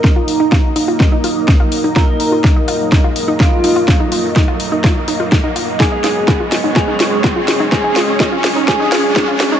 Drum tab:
HH |-o-o-o-o|-o-o-o-o|-o-o-o-o|-o-o-o-o|
SD |o-o-o-o-|o-o-o-o-|o-o-o-o-|oooooooo|
BD |o-o-o-o-|o-o-o-o-|o-o-o-o-|o-o-o-o-|

HH |-o-o-o-o|
SD |oooooooo|
BD |o-o-o-o-|